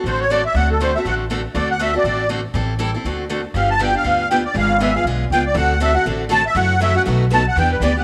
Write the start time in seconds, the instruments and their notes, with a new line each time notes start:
0.04 upright bass A1, steel-string acoustic guitar D3 A3 C4 F#4 A4, accordion C5
0.21 accordion C#5
0.30 steel-string acoustic guitar D3 A3 C4 F#4 A4, accordion D5
0.45 accordion E5
0.54 upright bass D2, steel-string acoustic guitar D3 A3 C4 F#4 A4, accordion F#5
0.71 accordion A4
0.80 steel-string acoustic guitar D3 A3 C4 F#4 A4, accordion C5
0.96 steel-string acoustic guitar C4 F#4 A4, accordion E5
1.05 upright bass A1, steel-string acoustic guitar D3 A3 C4 F#4 A4, accordion F#5
1.30 steel-string acoustic guitar D3 A3 C4 F#4 A4
1.55 upright bass D2, steel-string acoustic guitar D3 A3 C4 F#4 A4, accordion D5
1.71 accordion F#5
1.79 steel-string acoustic guitar D3 A3 C4 F#4 A4, accordion E5
1.94 steel-string acoustic guitar C4 F#4 A4, accordion D5
2.04 upright bass A1, steel-string acoustic guitar D3 A3 C4 F#4 A4
2.29 steel-string acoustic guitar D3 A3 C4 F#4 A4
2.54 upright bass A1, steel-string acoustic guitar E3 G3 C4 E4 A4
2.79 steel-string acoustic guitar E3 G3 C4 E4 A4
2.95 steel-string acoustic guitar C4 E4 A4
3.04 upright bass D2, steel-string acoustic guitar D3 A3 C4 F#4 A4
3.29 steel-string acoustic guitar D3 A3 C4 F#4 A4
3.54 upright bass G1, steel-string acoustic guitar D3 F3 B3 D4 G4, accordion F5
3.71 accordion A5
3.79 steel-string acoustic guitar D3 F3 B3 D4 G4, accordion G5
3.92 steel-string acoustic guitar B3 D4 G4, accordion F5
4.04 upright bass D2, steel-string acoustic guitar D3 F3 B3 D4 G4
4.31 steel-string acoustic guitar D3 F3 B3 D4 G4, accordion G5
4.45 accordion D5
4.54 upright bass G#1, steel-string acoustic guitar D3 G#3 B3 F4 G#4, accordion F5
4.80 steel-string acoustic guitar D3 G#3 B3 F4 G#4, accordion E5
4.95 steel-string acoustic guitar B3 F4 G#4, accordion F5
5.04 upright bass B1, steel-string acoustic guitar D3 G#3 B3 F4 G#4
5.30 upright bass C#2, steel-string acoustic guitar D3 G#3 B3 F4, accordion G5
5.34 steel-string acoustic guitar G#4
5.46 accordion D5
5.55 upright bass D2, steel-string acoustic guitar D3 A3 C4 F#4 A4, accordion F#5
5.80 steel-string acoustic guitar D3 A3 C4 F#4 A4, accordion E5
5.93 steel-string acoustic guitar C4 F#4 A4, accordion F#5
6.06 upright bass A1, steel-string acoustic guitar D3 A3 C4 F#4 A4
6.29 steel-string acoustic guitar D3 A3 C4 F#4 A4, accordion A5
6.46 accordion E5
6.55 upright bass F#2, steel-string acoustic guitar C#3 E3 F#3 A3 C#4 E4 F#4 C#5, accordion F#5
6.80 steel-string acoustic guitar C#3 E3 F#3 A3 C#4 E4 F#4 C#5, accordion E5
6.95 steel-string acoustic guitar A3 C#4 F#4, accordion F#5
7.06 upright bass B1, steel-string acoustic guitar B2 F#3 A3 D#4 F#4 B4
7.31 steel-string acoustic guitar B2 F#3 A3 D#4 F#4 B4, accordion A5
7.48 accordion F#5
7.56 upright bass E2, steel-string acoustic guitar E3 B3 D4 G4 B4, accordion G5
7.72 accordion B4
7.81 upright bass D2, steel-string acoustic guitar E3 B3 D4 G4 B4, accordion D5
7.97 steel-string acoustic guitar B3 D4 G4, accordion F#5